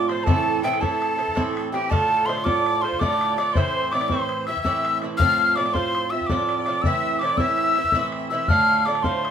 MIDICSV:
0, 0, Header, 1, 5, 480
1, 0, Start_track
1, 0, Tempo, 365631
1, 343, Time_signature, 9, 3, 24, 8
1, 12217, End_track
2, 0, Start_track
2, 0, Title_t, "Tin whistle"
2, 0, Program_c, 0, 75
2, 107, Note_on_c, 0, 84, 99
2, 313, Note_on_c, 0, 81, 123
2, 333, Note_off_c, 0, 84, 0
2, 818, Note_off_c, 0, 81, 0
2, 836, Note_on_c, 0, 79, 98
2, 1060, Note_on_c, 0, 81, 93
2, 1080, Note_off_c, 0, 79, 0
2, 1872, Note_off_c, 0, 81, 0
2, 2265, Note_on_c, 0, 79, 99
2, 2492, Note_on_c, 0, 81, 120
2, 2512, Note_off_c, 0, 79, 0
2, 2964, Note_on_c, 0, 84, 104
2, 2984, Note_off_c, 0, 81, 0
2, 3206, Note_on_c, 0, 86, 101
2, 3225, Note_off_c, 0, 84, 0
2, 3696, Note_on_c, 0, 84, 97
2, 3716, Note_off_c, 0, 86, 0
2, 3931, Note_on_c, 0, 86, 108
2, 3950, Note_off_c, 0, 84, 0
2, 4416, Note_off_c, 0, 86, 0
2, 4424, Note_on_c, 0, 86, 93
2, 4640, Note_on_c, 0, 84, 111
2, 4659, Note_off_c, 0, 86, 0
2, 5143, Note_on_c, 0, 86, 109
2, 5162, Note_off_c, 0, 84, 0
2, 5360, Note_on_c, 0, 84, 107
2, 5380, Note_off_c, 0, 86, 0
2, 5857, Note_off_c, 0, 84, 0
2, 5864, Note_on_c, 0, 88, 89
2, 6067, Note_off_c, 0, 88, 0
2, 6075, Note_on_c, 0, 88, 92
2, 6544, Note_off_c, 0, 88, 0
2, 6792, Note_on_c, 0, 89, 119
2, 7294, Note_on_c, 0, 86, 103
2, 7314, Note_off_c, 0, 89, 0
2, 7530, Note_on_c, 0, 84, 112
2, 7550, Note_off_c, 0, 86, 0
2, 8011, Note_on_c, 0, 88, 87
2, 8030, Note_off_c, 0, 84, 0
2, 8228, Note_on_c, 0, 86, 95
2, 8248, Note_off_c, 0, 88, 0
2, 8702, Note_off_c, 0, 86, 0
2, 8710, Note_on_c, 0, 86, 94
2, 8951, Note_on_c, 0, 88, 114
2, 8971, Note_off_c, 0, 86, 0
2, 9443, Note_on_c, 0, 86, 100
2, 9462, Note_off_c, 0, 88, 0
2, 9681, Note_on_c, 0, 88, 116
2, 9700, Note_off_c, 0, 86, 0
2, 10586, Note_off_c, 0, 88, 0
2, 10898, Note_on_c, 0, 88, 99
2, 11139, Note_on_c, 0, 89, 123
2, 11159, Note_off_c, 0, 88, 0
2, 11626, Note_on_c, 0, 86, 100
2, 11646, Note_off_c, 0, 89, 0
2, 11851, Note_on_c, 0, 84, 98
2, 11871, Note_off_c, 0, 86, 0
2, 12217, Note_off_c, 0, 84, 0
2, 12217, End_track
3, 0, Start_track
3, 0, Title_t, "Accordion"
3, 0, Program_c, 1, 21
3, 125, Note_on_c, 1, 72, 77
3, 324, Note_on_c, 1, 69, 81
3, 333, Note_off_c, 1, 72, 0
3, 1029, Note_off_c, 1, 69, 0
3, 1049, Note_on_c, 1, 69, 82
3, 2213, Note_off_c, 1, 69, 0
3, 2282, Note_on_c, 1, 67, 66
3, 2493, Note_on_c, 1, 69, 78
3, 2513, Note_off_c, 1, 67, 0
3, 2994, Note_on_c, 1, 72, 74
3, 3003, Note_off_c, 1, 69, 0
3, 3096, Note_off_c, 1, 72, 0
3, 3230, Note_on_c, 1, 74, 83
3, 3682, Note_off_c, 1, 74, 0
3, 3706, Note_on_c, 1, 72, 74
3, 3940, Note_on_c, 1, 74, 68
3, 3945, Note_off_c, 1, 72, 0
3, 4414, Note_off_c, 1, 74, 0
3, 4434, Note_on_c, 1, 74, 75
3, 4659, Note_on_c, 1, 72, 86
3, 4669, Note_off_c, 1, 74, 0
3, 5153, Note_on_c, 1, 74, 78
3, 5165, Note_off_c, 1, 72, 0
3, 5366, Note_off_c, 1, 74, 0
3, 5392, Note_on_c, 1, 72, 69
3, 5844, Note_off_c, 1, 72, 0
3, 5881, Note_on_c, 1, 76, 78
3, 6066, Note_off_c, 1, 76, 0
3, 6086, Note_on_c, 1, 76, 64
3, 6549, Note_off_c, 1, 76, 0
3, 6812, Note_on_c, 1, 77, 86
3, 7294, Note_on_c, 1, 74, 78
3, 7322, Note_off_c, 1, 77, 0
3, 7527, Note_on_c, 1, 72, 72
3, 7540, Note_off_c, 1, 74, 0
3, 7990, Note_off_c, 1, 72, 0
3, 8035, Note_on_c, 1, 76, 84
3, 8260, Note_on_c, 1, 74, 65
3, 8270, Note_off_c, 1, 76, 0
3, 8437, Note_off_c, 1, 74, 0
3, 8457, Note_on_c, 1, 74, 69
3, 8598, Note_off_c, 1, 74, 0
3, 8618, Note_on_c, 1, 74, 83
3, 8754, Note_off_c, 1, 74, 0
3, 8774, Note_on_c, 1, 74, 76
3, 8998, Note_on_c, 1, 76, 91
3, 8999, Note_off_c, 1, 74, 0
3, 9490, Note_on_c, 1, 74, 83
3, 9495, Note_off_c, 1, 76, 0
3, 9718, Note_off_c, 1, 74, 0
3, 9725, Note_on_c, 1, 76, 83
3, 10873, Note_off_c, 1, 76, 0
3, 10914, Note_on_c, 1, 76, 69
3, 11127, Note_off_c, 1, 76, 0
3, 11153, Note_on_c, 1, 77, 87
3, 11641, Note_on_c, 1, 74, 78
3, 11654, Note_off_c, 1, 77, 0
3, 11851, Note_off_c, 1, 74, 0
3, 11868, Note_on_c, 1, 72, 74
3, 12217, Note_off_c, 1, 72, 0
3, 12217, End_track
4, 0, Start_track
4, 0, Title_t, "Bouzouki"
4, 0, Program_c, 2, 25
4, 116, Note_on_c, 2, 45, 58
4, 129, Note_on_c, 2, 53, 53
4, 142, Note_on_c, 2, 60, 49
4, 151, Note_on_c, 2, 65, 56
4, 332, Note_off_c, 2, 45, 0
4, 347, Note_off_c, 2, 60, 0
4, 348, Note_on_c, 2, 45, 73
4, 350, Note_off_c, 2, 53, 0
4, 357, Note_on_c, 2, 52, 84
4, 362, Note_off_c, 2, 65, 0
4, 363, Note_on_c, 2, 60, 86
4, 372, Note_on_c, 2, 64, 76
4, 814, Note_off_c, 2, 45, 0
4, 828, Note_off_c, 2, 52, 0
4, 829, Note_on_c, 2, 45, 55
4, 838, Note_off_c, 2, 60, 0
4, 843, Note_on_c, 2, 52, 60
4, 848, Note_off_c, 2, 64, 0
4, 853, Note_on_c, 2, 60, 68
4, 865, Note_on_c, 2, 64, 67
4, 1044, Note_off_c, 2, 64, 0
4, 1059, Note_off_c, 2, 60, 0
4, 1060, Note_off_c, 2, 45, 0
4, 1060, Note_on_c, 2, 64, 69
4, 1065, Note_off_c, 2, 52, 0
4, 1074, Note_on_c, 2, 60, 58
4, 1080, Note_on_c, 2, 52, 59
4, 1086, Note_on_c, 2, 45, 54
4, 1524, Note_off_c, 2, 64, 0
4, 1540, Note_on_c, 2, 64, 44
4, 1543, Note_off_c, 2, 60, 0
4, 1559, Note_on_c, 2, 60, 40
4, 1562, Note_off_c, 2, 52, 0
4, 1564, Note_off_c, 2, 45, 0
4, 1579, Note_on_c, 2, 52, 32
4, 1773, Note_off_c, 2, 52, 0
4, 1773, Note_on_c, 2, 45, 74
4, 1776, Note_off_c, 2, 64, 0
4, 1781, Note_off_c, 2, 60, 0
4, 1788, Note_on_c, 2, 52, 77
4, 1797, Note_on_c, 2, 60, 95
4, 1801, Note_on_c, 2, 64, 76
4, 2247, Note_off_c, 2, 45, 0
4, 2261, Note_off_c, 2, 52, 0
4, 2263, Note_on_c, 2, 45, 56
4, 2274, Note_off_c, 2, 60, 0
4, 2277, Note_on_c, 2, 52, 56
4, 2282, Note_off_c, 2, 64, 0
4, 2290, Note_on_c, 2, 60, 64
4, 2304, Note_on_c, 2, 64, 55
4, 2475, Note_off_c, 2, 45, 0
4, 2491, Note_on_c, 2, 45, 70
4, 2498, Note_off_c, 2, 52, 0
4, 2503, Note_on_c, 2, 50, 75
4, 2509, Note_off_c, 2, 60, 0
4, 2514, Note_on_c, 2, 57, 90
4, 2515, Note_off_c, 2, 64, 0
4, 2521, Note_on_c, 2, 65, 83
4, 2968, Note_off_c, 2, 45, 0
4, 2982, Note_off_c, 2, 50, 0
4, 2983, Note_on_c, 2, 45, 59
4, 2997, Note_on_c, 2, 50, 55
4, 3001, Note_off_c, 2, 65, 0
4, 3006, Note_off_c, 2, 57, 0
4, 3012, Note_on_c, 2, 57, 60
4, 3020, Note_on_c, 2, 65, 70
4, 3196, Note_off_c, 2, 65, 0
4, 3206, Note_off_c, 2, 57, 0
4, 3211, Note_off_c, 2, 50, 0
4, 3212, Note_on_c, 2, 65, 60
4, 3217, Note_off_c, 2, 45, 0
4, 3221, Note_on_c, 2, 57, 64
4, 3227, Note_on_c, 2, 50, 59
4, 3238, Note_on_c, 2, 45, 62
4, 3694, Note_off_c, 2, 65, 0
4, 3710, Note_on_c, 2, 65, 44
4, 3715, Note_off_c, 2, 50, 0
4, 3720, Note_off_c, 2, 45, 0
4, 3728, Note_off_c, 2, 57, 0
4, 3733, Note_on_c, 2, 57, 41
4, 3749, Note_on_c, 2, 50, 40
4, 3939, Note_off_c, 2, 50, 0
4, 3940, Note_off_c, 2, 65, 0
4, 3948, Note_on_c, 2, 45, 70
4, 3952, Note_off_c, 2, 57, 0
4, 3955, Note_on_c, 2, 50, 77
4, 3968, Note_on_c, 2, 57, 78
4, 3976, Note_on_c, 2, 65, 80
4, 4417, Note_off_c, 2, 45, 0
4, 4431, Note_off_c, 2, 50, 0
4, 4433, Note_on_c, 2, 45, 56
4, 4447, Note_on_c, 2, 50, 55
4, 4449, Note_off_c, 2, 65, 0
4, 4457, Note_off_c, 2, 57, 0
4, 4462, Note_on_c, 2, 57, 62
4, 4473, Note_on_c, 2, 65, 53
4, 4662, Note_off_c, 2, 45, 0
4, 4669, Note_off_c, 2, 50, 0
4, 4675, Note_on_c, 2, 45, 69
4, 4676, Note_off_c, 2, 57, 0
4, 4682, Note_off_c, 2, 65, 0
4, 4683, Note_on_c, 2, 52, 80
4, 4689, Note_on_c, 2, 60, 76
4, 4697, Note_on_c, 2, 64, 78
4, 5138, Note_off_c, 2, 45, 0
4, 5154, Note_on_c, 2, 45, 51
4, 5155, Note_off_c, 2, 52, 0
4, 5170, Note_off_c, 2, 64, 0
4, 5171, Note_on_c, 2, 52, 61
4, 5178, Note_off_c, 2, 60, 0
4, 5183, Note_on_c, 2, 60, 66
4, 5191, Note_on_c, 2, 64, 67
4, 5377, Note_off_c, 2, 64, 0
4, 5382, Note_off_c, 2, 45, 0
4, 5389, Note_off_c, 2, 60, 0
4, 5391, Note_off_c, 2, 52, 0
4, 5393, Note_on_c, 2, 64, 60
4, 5404, Note_on_c, 2, 60, 59
4, 5410, Note_on_c, 2, 52, 66
4, 5419, Note_on_c, 2, 45, 54
4, 5867, Note_off_c, 2, 64, 0
4, 5883, Note_on_c, 2, 64, 39
4, 5886, Note_off_c, 2, 52, 0
4, 5891, Note_off_c, 2, 45, 0
4, 5891, Note_off_c, 2, 60, 0
4, 5897, Note_on_c, 2, 60, 41
4, 5915, Note_on_c, 2, 52, 40
4, 6100, Note_off_c, 2, 52, 0
4, 6105, Note_off_c, 2, 60, 0
4, 6107, Note_off_c, 2, 64, 0
4, 6109, Note_on_c, 2, 45, 58
4, 6115, Note_on_c, 2, 52, 85
4, 6121, Note_on_c, 2, 60, 78
4, 6134, Note_on_c, 2, 64, 84
4, 6578, Note_off_c, 2, 45, 0
4, 6592, Note_off_c, 2, 52, 0
4, 6594, Note_on_c, 2, 45, 51
4, 6607, Note_on_c, 2, 52, 58
4, 6608, Note_off_c, 2, 64, 0
4, 6615, Note_off_c, 2, 60, 0
4, 6621, Note_on_c, 2, 60, 62
4, 6632, Note_on_c, 2, 64, 59
4, 6803, Note_off_c, 2, 45, 0
4, 6818, Note_on_c, 2, 45, 76
4, 6823, Note_off_c, 2, 60, 0
4, 6826, Note_off_c, 2, 52, 0
4, 6832, Note_on_c, 2, 53, 72
4, 6839, Note_on_c, 2, 60, 84
4, 6841, Note_off_c, 2, 64, 0
4, 6847, Note_on_c, 2, 65, 74
4, 7298, Note_off_c, 2, 45, 0
4, 7314, Note_on_c, 2, 45, 61
4, 7317, Note_off_c, 2, 53, 0
4, 7325, Note_off_c, 2, 65, 0
4, 7331, Note_on_c, 2, 53, 55
4, 7337, Note_off_c, 2, 60, 0
4, 7342, Note_on_c, 2, 60, 61
4, 7349, Note_on_c, 2, 65, 53
4, 7534, Note_off_c, 2, 65, 0
4, 7542, Note_off_c, 2, 45, 0
4, 7544, Note_off_c, 2, 60, 0
4, 7550, Note_on_c, 2, 65, 60
4, 7551, Note_off_c, 2, 53, 0
4, 7560, Note_on_c, 2, 60, 57
4, 7572, Note_on_c, 2, 53, 62
4, 7578, Note_on_c, 2, 45, 50
4, 8023, Note_off_c, 2, 65, 0
4, 8039, Note_on_c, 2, 65, 43
4, 8048, Note_off_c, 2, 53, 0
4, 8050, Note_off_c, 2, 60, 0
4, 8051, Note_off_c, 2, 45, 0
4, 8055, Note_on_c, 2, 60, 41
4, 8075, Note_on_c, 2, 53, 36
4, 8259, Note_off_c, 2, 53, 0
4, 8265, Note_off_c, 2, 60, 0
4, 8265, Note_off_c, 2, 65, 0
4, 8266, Note_on_c, 2, 45, 67
4, 8274, Note_on_c, 2, 53, 76
4, 8281, Note_on_c, 2, 60, 77
4, 8291, Note_on_c, 2, 65, 81
4, 8735, Note_off_c, 2, 45, 0
4, 8751, Note_on_c, 2, 45, 53
4, 8752, Note_off_c, 2, 53, 0
4, 8762, Note_off_c, 2, 60, 0
4, 8767, Note_off_c, 2, 65, 0
4, 8767, Note_on_c, 2, 53, 64
4, 8779, Note_on_c, 2, 60, 57
4, 8788, Note_on_c, 2, 65, 51
4, 8981, Note_off_c, 2, 45, 0
4, 8990, Note_off_c, 2, 53, 0
4, 8996, Note_off_c, 2, 60, 0
4, 8996, Note_on_c, 2, 45, 64
4, 9000, Note_off_c, 2, 65, 0
4, 9006, Note_on_c, 2, 52, 73
4, 9009, Note_on_c, 2, 60, 84
4, 9021, Note_on_c, 2, 64, 79
4, 9457, Note_off_c, 2, 45, 0
4, 9473, Note_off_c, 2, 52, 0
4, 9473, Note_on_c, 2, 45, 61
4, 9483, Note_off_c, 2, 60, 0
4, 9489, Note_on_c, 2, 52, 55
4, 9493, Note_off_c, 2, 64, 0
4, 9498, Note_on_c, 2, 60, 65
4, 9507, Note_on_c, 2, 64, 65
4, 9688, Note_off_c, 2, 64, 0
4, 9694, Note_off_c, 2, 60, 0
4, 9702, Note_off_c, 2, 45, 0
4, 9703, Note_off_c, 2, 52, 0
4, 9704, Note_on_c, 2, 64, 64
4, 9709, Note_on_c, 2, 60, 69
4, 9719, Note_on_c, 2, 52, 64
4, 9733, Note_on_c, 2, 45, 58
4, 10170, Note_off_c, 2, 64, 0
4, 10186, Note_on_c, 2, 64, 48
4, 10193, Note_off_c, 2, 60, 0
4, 10202, Note_off_c, 2, 52, 0
4, 10209, Note_off_c, 2, 45, 0
4, 10209, Note_on_c, 2, 60, 39
4, 10222, Note_on_c, 2, 52, 35
4, 10416, Note_off_c, 2, 52, 0
4, 10418, Note_on_c, 2, 45, 70
4, 10419, Note_off_c, 2, 64, 0
4, 10425, Note_off_c, 2, 60, 0
4, 10432, Note_on_c, 2, 52, 85
4, 10441, Note_on_c, 2, 60, 82
4, 10450, Note_on_c, 2, 64, 88
4, 10889, Note_off_c, 2, 45, 0
4, 10904, Note_off_c, 2, 52, 0
4, 10905, Note_on_c, 2, 45, 57
4, 10914, Note_off_c, 2, 60, 0
4, 10919, Note_on_c, 2, 52, 61
4, 10928, Note_off_c, 2, 64, 0
4, 10930, Note_on_c, 2, 60, 59
4, 10942, Note_on_c, 2, 64, 62
4, 11130, Note_off_c, 2, 45, 0
4, 11146, Note_off_c, 2, 52, 0
4, 11146, Note_on_c, 2, 45, 72
4, 11152, Note_off_c, 2, 60, 0
4, 11154, Note_on_c, 2, 50, 75
4, 11157, Note_off_c, 2, 64, 0
4, 11164, Note_on_c, 2, 57, 80
4, 11173, Note_on_c, 2, 65, 83
4, 11627, Note_off_c, 2, 45, 0
4, 11643, Note_on_c, 2, 45, 63
4, 11645, Note_off_c, 2, 57, 0
4, 11649, Note_off_c, 2, 65, 0
4, 11653, Note_off_c, 2, 50, 0
4, 11658, Note_on_c, 2, 50, 67
4, 11664, Note_on_c, 2, 57, 62
4, 11677, Note_on_c, 2, 65, 71
4, 11858, Note_off_c, 2, 65, 0
4, 11867, Note_off_c, 2, 57, 0
4, 11868, Note_off_c, 2, 45, 0
4, 11873, Note_on_c, 2, 65, 71
4, 11876, Note_off_c, 2, 50, 0
4, 11883, Note_on_c, 2, 57, 62
4, 11891, Note_on_c, 2, 50, 66
4, 11899, Note_on_c, 2, 45, 59
4, 12217, Note_off_c, 2, 45, 0
4, 12217, Note_off_c, 2, 50, 0
4, 12217, Note_off_c, 2, 57, 0
4, 12217, Note_off_c, 2, 65, 0
4, 12217, End_track
5, 0, Start_track
5, 0, Title_t, "Bodhran"
5, 123, Note_on_c, 9, 64, 61
5, 254, Note_off_c, 9, 64, 0
5, 356, Note_on_c, 9, 64, 102
5, 488, Note_off_c, 9, 64, 0
5, 847, Note_on_c, 9, 64, 66
5, 964, Note_off_c, 9, 64, 0
5, 964, Note_on_c, 9, 64, 55
5, 1081, Note_off_c, 9, 64, 0
5, 1081, Note_on_c, 9, 64, 78
5, 1213, Note_off_c, 9, 64, 0
5, 1337, Note_on_c, 9, 64, 59
5, 1469, Note_off_c, 9, 64, 0
5, 1561, Note_on_c, 9, 64, 55
5, 1678, Note_off_c, 9, 64, 0
5, 1678, Note_on_c, 9, 64, 22
5, 1801, Note_off_c, 9, 64, 0
5, 1801, Note_on_c, 9, 64, 79
5, 1932, Note_off_c, 9, 64, 0
5, 2061, Note_on_c, 9, 64, 68
5, 2192, Note_off_c, 9, 64, 0
5, 2287, Note_on_c, 9, 64, 55
5, 2418, Note_off_c, 9, 64, 0
5, 2514, Note_on_c, 9, 64, 78
5, 2645, Note_off_c, 9, 64, 0
5, 3009, Note_on_c, 9, 64, 62
5, 3123, Note_off_c, 9, 64, 0
5, 3123, Note_on_c, 9, 64, 58
5, 3235, Note_off_c, 9, 64, 0
5, 3235, Note_on_c, 9, 64, 78
5, 3366, Note_off_c, 9, 64, 0
5, 3497, Note_on_c, 9, 64, 57
5, 3628, Note_off_c, 9, 64, 0
5, 3730, Note_on_c, 9, 64, 51
5, 3840, Note_off_c, 9, 64, 0
5, 3840, Note_on_c, 9, 64, 22
5, 3956, Note_off_c, 9, 64, 0
5, 3956, Note_on_c, 9, 64, 85
5, 4088, Note_off_c, 9, 64, 0
5, 4215, Note_on_c, 9, 64, 73
5, 4347, Note_off_c, 9, 64, 0
5, 4439, Note_on_c, 9, 64, 67
5, 4570, Note_off_c, 9, 64, 0
5, 4666, Note_on_c, 9, 64, 86
5, 4797, Note_off_c, 9, 64, 0
5, 5155, Note_on_c, 9, 64, 73
5, 5267, Note_off_c, 9, 64, 0
5, 5267, Note_on_c, 9, 64, 61
5, 5376, Note_off_c, 9, 64, 0
5, 5376, Note_on_c, 9, 64, 82
5, 5507, Note_off_c, 9, 64, 0
5, 5634, Note_on_c, 9, 64, 70
5, 5765, Note_off_c, 9, 64, 0
5, 5865, Note_on_c, 9, 64, 59
5, 5994, Note_off_c, 9, 64, 0
5, 5994, Note_on_c, 9, 64, 23
5, 6100, Note_off_c, 9, 64, 0
5, 6100, Note_on_c, 9, 64, 81
5, 6232, Note_off_c, 9, 64, 0
5, 6364, Note_on_c, 9, 64, 79
5, 6495, Note_off_c, 9, 64, 0
5, 6587, Note_on_c, 9, 64, 56
5, 6719, Note_off_c, 9, 64, 0
5, 6821, Note_on_c, 9, 64, 87
5, 6952, Note_off_c, 9, 64, 0
5, 7317, Note_on_c, 9, 64, 60
5, 7427, Note_off_c, 9, 64, 0
5, 7427, Note_on_c, 9, 64, 52
5, 7544, Note_off_c, 9, 64, 0
5, 7544, Note_on_c, 9, 64, 70
5, 7675, Note_off_c, 9, 64, 0
5, 7808, Note_on_c, 9, 64, 62
5, 7939, Note_off_c, 9, 64, 0
5, 8036, Note_on_c, 9, 64, 46
5, 8153, Note_off_c, 9, 64, 0
5, 8153, Note_on_c, 9, 64, 21
5, 8265, Note_off_c, 9, 64, 0
5, 8265, Note_on_c, 9, 64, 78
5, 8396, Note_off_c, 9, 64, 0
5, 8518, Note_on_c, 9, 64, 61
5, 8649, Note_off_c, 9, 64, 0
5, 8744, Note_on_c, 9, 64, 50
5, 8875, Note_off_c, 9, 64, 0
5, 8977, Note_on_c, 9, 64, 80
5, 9109, Note_off_c, 9, 64, 0
5, 9470, Note_on_c, 9, 64, 56
5, 9578, Note_off_c, 9, 64, 0
5, 9578, Note_on_c, 9, 64, 53
5, 9683, Note_off_c, 9, 64, 0
5, 9683, Note_on_c, 9, 64, 83
5, 9814, Note_off_c, 9, 64, 0
5, 9948, Note_on_c, 9, 64, 57
5, 10079, Note_off_c, 9, 64, 0
5, 10180, Note_on_c, 9, 64, 52
5, 10293, Note_off_c, 9, 64, 0
5, 10293, Note_on_c, 9, 64, 22
5, 10399, Note_off_c, 9, 64, 0
5, 10399, Note_on_c, 9, 64, 77
5, 10531, Note_off_c, 9, 64, 0
5, 10665, Note_on_c, 9, 64, 64
5, 10797, Note_off_c, 9, 64, 0
5, 11134, Note_on_c, 9, 64, 86
5, 11266, Note_off_c, 9, 64, 0
5, 11636, Note_on_c, 9, 64, 60
5, 11752, Note_off_c, 9, 64, 0
5, 11752, Note_on_c, 9, 64, 54
5, 11869, Note_off_c, 9, 64, 0
5, 11869, Note_on_c, 9, 64, 87
5, 12000, Note_off_c, 9, 64, 0
5, 12141, Note_on_c, 9, 64, 69
5, 12217, Note_off_c, 9, 64, 0
5, 12217, End_track
0, 0, End_of_file